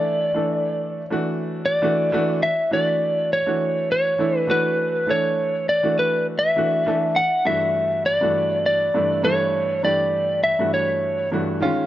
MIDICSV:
0, 0, Header, 1, 3, 480
1, 0, Start_track
1, 0, Tempo, 594059
1, 33, Time_signature, 4, 2, 24, 8
1, 9588, End_track
2, 0, Start_track
2, 0, Title_t, "Lead electric guitar"
2, 0, Program_c, 0, 29
2, 0, Note_on_c, 0, 74, 73
2, 849, Note_off_c, 0, 74, 0
2, 849, Note_on_c, 0, 73, 73
2, 1328, Note_off_c, 0, 73, 0
2, 1338, Note_on_c, 0, 74, 69
2, 1959, Note_off_c, 0, 74, 0
2, 1963, Note_on_c, 0, 76, 78
2, 2182, Note_off_c, 0, 76, 0
2, 2209, Note_on_c, 0, 74, 69
2, 2687, Note_off_c, 0, 74, 0
2, 2691, Note_on_c, 0, 73, 78
2, 3156, Note_off_c, 0, 73, 0
2, 3165, Note_on_c, 0, 73, 81
2, 3545, Note_off_c, 0, 73, 0
2, 3545, Note_on_c, 0, 71, 81
2, 3644, Note_off_c, 0, 71, 0
2, 3644, Note_on_c, 0, 71, 78
2, 4125, Note_on_c, 0, 73, 74
2, 4133, Note_off_c, 0, 71, 0
2, 4595, Note_off_c, 0, 73, 0
2, 4598, Note_on_c, 0, 74, 76
2, 4819, Note_off_c, 0, 74, 0
2, 4841, Note_on_c, 0, 71, 76
2, 5061, Note_off_c, 0, 71, 0
2, 5161, Note_on_c, 0, 76, 84
2, 5787, Note_on_c, 0, 78, 91
2, 5816, Note_off_c, 0, 76, 0
2, 6033, Note_on_c, 0, 76, 77
2, 6037, Note_off_c, 0, 78, 0
2, 6509, Note_off_c, 0, 76, 0
2, 6512, Note_on_c, 0, 74, 82
2, 6989, Note_off_c, 0, 74, 0
2, 6999, Note_on_c, 0, 74, 74
2, 7467, Note_off_c, 0, 74, 0
2, 7470, Note_on_c, 0, 73, 85
2, 7952, Note_off_c, 0, 73, 0
2, 7955, Note_on_c, 0, 74, 75
2, 8429, Note_off_c, 0, 74, 0
2, 8432, Note_on_c, 0, 76, 72
2, 8673, Note_off_c, 0, 76, 0
2, 8677, Note_on_c, 0, 73, 68
2, 9123, Note_off_c, 0, 73, 0
2, 9588, End_track
3, 0, Start_track
3, 0, Title_t, "Grand piano"
3, 0, Program_c, 1, 0
3, 0, Note_on_c, 1, 52, 68
3, 0, Note_on_c, 1, 57, 64
3, 0, Note_on_c, 1, 62, 65
3, 0, Note_on_c, 1, 69, 76
3, 225, Note_off_c, 1, 52, 0
3, 227, Note_off_c, 1, 57, 0
3, 229, Note_off_c, 1, 62, 0
3, 232, Note_off_c, 1, 69, 0
3, 276, Note_on_c, 1, 52, 64
3, 279, Note_on_c, 1, 57, 59
3, 288, Note_on_c, 1, 62, 59
3, 290, Note_on_c, 1, 69, 69
3, 813, Note_off_c, 1, 52, 0
3, 814, Note_off_c, 1, 57, 0
3, 819, Note_off_c, 1, 62, 0
3, 820, Note_off_c, 1, 69, 0
3, 892, Note_on_c, 1, 52, 73
3, 896, Note_on_c, 1, 57, 65
3, 899, Note_on_c, 1, 62, 64
3, 908, Note_on_c, 1, 66, 81
3, 1416, Note_off_c, 1, 52, 0
3, 1419, Note_off_c, 1, 57, 0
3, 1420, Note_off_c, 1, 62, 0
3, 1425, Note_off_c, 1, 66, 0
3, 1469, Note_on_c, 1, 52, 78
3, 1474, Note_on_c, 1, 57, 75
3, 1478, Note_on_c, 1, 62, 70
3, 1487, Note_on_c, 1, 66, 84
3, 1687, Note_off_c, 1, 52, 0
3, 1690, Note_off_c, 1, 57, 0
3, 1692, Note_off_c, 1, 62, 0
3, 1696, Note_off_c, 1, 66, 0
3, 1714, Note_on_c, 1, 52, 87
3, 1723, Note_on_c, 1, 57, 76
3, 1725, Note_on_c, 1, 62, 75
3, 1730, Note_on_c, 1, 66, 90
3, 1954, Note_off_c, 1, 52, 0
3, 1959, Note_off_c, 1, 57, 0
3, 1960, Note_off_c, 1, 62, 0
3, 1962, Note_off_c, 1, 66, 0
3, 2188, Note_on_c, 1, 52, 66
3, 2191, Note_on_c, 1, 57, 58
3, 2198, Note_on_c, 1, 62, 58
3, 2203, Note_on_c, 1, 66, 67
3, 2729, Note_off_c, 1, 52, 0
3, 2730, Note_off_c, 1, 57, 0
3, 2734, Note_off_c, 1, 62, 0
3, 2736, Note_off_c, 1, 66, 0
3, 2798, Note_on_c, 1, 52, 62
3, 2801, Note_on_c, 1, 57, 55
3, 2805, Note_on_c, 1, 62, 54
3, 2809, Note_on_c, 1, 66, 64
3, 3329, Note_off_c, 1, 52, 0
3, 3331, Note_off_c, 1, 57, 0
3, 3333, Note_off_c, 1, 62, 0
3, 3335, Note_off_c, 1, 66, 0
3, 3380, Note_on_c, 1, 52, 63
3, 3386, Note_on_c, 1, 57, 59
3, 3390, Note_on_c, 1, 62, 64
3, 3396, Note_on_c, 1, 64, 76
3, 3601, Note_off_c, 1, 52, 0
3, 3605, Note_off_c, 1, 57, 0
3, 3607, Note_off_c, 1, 62, 0
3, 3611, Note_off_c, 1, 64, 0
3, 3613, Note_on_c, 1, 52, 65
3, 3621, Note_on_c, 1, 57, 64
3, 3626, Note_on_c, 1, 62, 63
3, 3632, Note_on_c, 1, 66, 80
3, 4055, Note_off_c, 1, 52, 0
3, 4058, Note_off_c, 1, 57, 0
3, 4061, Note_off_c, 1, 62, 0
3, 4064, Note_off_c, 1, 66, 0
3, 4094, Note_on_c, 1, 52, 60
3, 4097, Note_on_c, 1, 57, 57
3, 4105, Note_on_c, 1, 62, 59
3, 4111, Note_on_c, 1, 69, 65
3, 4641, Note_off_c, 1, 52, 0
3, 4643, Note_off_c, 1, 57, 0
3, 4647, Note_off_c, 1, 62, 0
3, 4650, Note_off_c, 1, 69, 0
3, 4711, Note_on_c, 1, 52, 62
3, 4717, Note_on_c, 1, 57, 60
3, 4721, Note_on_c, 1, 62, 58
3, 4723, Note_on_c, 1, 66, 65
3, 5245, Note_off_c, 1, 52, 0
3, 5248, Note_off_c, 1, 57, 0
3, 5250, Note_off_c, 1, 62, 0
3, 5251, Note_off_c, 1, 66, 0
3, 5299, Note_on_c, 1, 52, 67
3, 5305, Note_on_c, 1, 57, 57
3, 5312, Note_on_c, 1, 62, 61
3, 5315, Note_on_c, 1, 66, 75
3, 5522, Note_off_c, 1, 52, 0
3, 5524, Note_off_c, 1, 57, 0
3, 5528, Note_off_c, 1, 62, 0
3, 5530, Note_off_c, 1, 66, 0
3, 5544, Note_on_c, 1, 52, 75
3, 5546, Note_on_c, 1, 57, 61
3, 5553, Note_on_c, 1, 62, 67
3, 5558, Note_on_c, 1, 69, 78
3, 5789, Note_off_c, 1, 52, 0
3, 5790, Note_off_c, 1, 57, 0
3, 5793, Note_off_c, 1, 62, 0
3, 5795, Note_off_c, 1, 69, 0
3, 6020, Note_on_c, 1, 43, 63
3, 6024, Note_on_c, 1, 52, 62
3, 6026, Note_on_c, 1, 62, 64
3, 6027, Note_on_c, 1, 57, 62
3, 6035, Note_on_c, 1, 66, 73
3, 6564, Note_off_c, 1, 43, 0
3, 6566, Note_off_c, 1, 52, 0
3, 6567, Note_off_c, 1, 57, 0
3, 6567, Note_off_c, 1, 62, 0
3, 6571, Note_off_c, 1, 66, 0
3, 6631, Note_on_c, 1, 43, 57
3, 6637, Note_on_c, 1, 52, 57
3, 6646, Note_on_c, 1, 57, 55
3, 6647, Note_on_c, 1, 62, 61
3, 6649, Note_on_c, 1, 66, 70
3, 7165, Note_off_c, 1, 43, 0
3, 7168, Note_off_c, 1, 52, 0
3, 7173, Note_off_c, 1, 57, 0
3, 7173, Note_off_c, 1, 62, 0
3, 7174, Note_off_c, 1, 66, 0
3, 7224, Note_on_c, 1, 43, 67
3, 7227, Note_on_c, 1, 52, 60
3, 7230, Note_on_c, 1, 57, 66
3, 7235, Note_on_c, 1, 62, 61
3, 7237, Note_on_c, 1, 64, 71
3, 7444, Note_off_c, 1, 43, 0
3, 7445, Note_off_c, 1, 52, 0
3, 7447, Note_off_c, 1, 57, 0
3, 7449, Note_off_c, 1, 62, 0
3, 7450, Note_off_c, 1, 64, 0
3, 7460, Note_on_c, 1, 43, 70
3, 7464, Note_on_c, 1, 52, 60
3, 7465, Note_on_c, 1, 57, 63
3, 7473, Note_on_c, 1, 62, 64
3, 7473, Note_on_c, 1, 69, 73
3, 7898, Note_off_c, 1, 43, 0
3, 7900, Note_off_c, 1, 52, 0
3, 7900, Note_off_c, 1, 57, 0
3, 7904, Note_off_c, 1, 62, 0
3, 7904, Note_off_c, 1, 69, 0
3, 7943, Note_on_c, 1, 43, 63
3, 7947, Note_on_c, 1, 52, 59
3, 7950, Note_on_c, 1, 57, 55
3, 7955, Note_on_c, 1, 62, 61
3, 7959, Note_on_c, 1, 67, 65
3, 8486, Note_off_c, 1, 43, 0
3, 8488, Note_off_c, 1, 52, 0
3, 8489, Note_off_c, 1, 57, 0
3, 8492, Note_off_c, 1, 62, 0
3, 8494, Note_off_c, 1, 67, 0
3, 8556, Note_on_c, 1, 43, 57
3, 8559, Note_on_c, 1, 57, 59
3, 8560, Note_on_c, 1, 52, 56
3, 8564, Note_on_c, 1, 62, 54
3, 8569, Note_on_c, 1, 66, 68
3, 9088, Note_off_c, 1, 43, 0
3, 9090, Note_off_c, 1, 52, 0
3, 9090, Note_off_c, 1, 57, 0
3, 9092, Note_off_c, 1, 62, 0
3, 9095, Note_off_c, 1, 66, 0
3, 9143, Note_on_c, 1, 43, 68
3, 9148, Note_on_c, 1, 52, 62
3, 9149, Note_on_c, 1, 57, 62
3, 9154, Note_on_c, 1, 62, 59
3, 9160, Note_on_c, 1, 66, 70
3, 9364, Note_off_c, 1, 43, 0
3, 9367, Note_off_c, 1, 52, 0
3, 9367, Note_off_c, 1, 57, 0
3, 9370, Note_off_c, 1, 62, 0
3, 9372, Note_off_c, 1, 66, 0
3, 9377, Note_on_c, 1, 51, 77
3, 9386, Note_on_c, 1, 56, 68
3, 9391, Note_on_c, 1, 61, 73
3, 9392, Note_on_c, 1, 65, 90
3, 9588, Note_off_c, 1, 51, 0
3, 9588, Note_off_c, 1, 56, 0
3, 9588, Note_off_c, 1, 61, 0
3, 9588, Note_off_c, 1, 65, 0
3, 9588, End_track
0, 0, End_of_file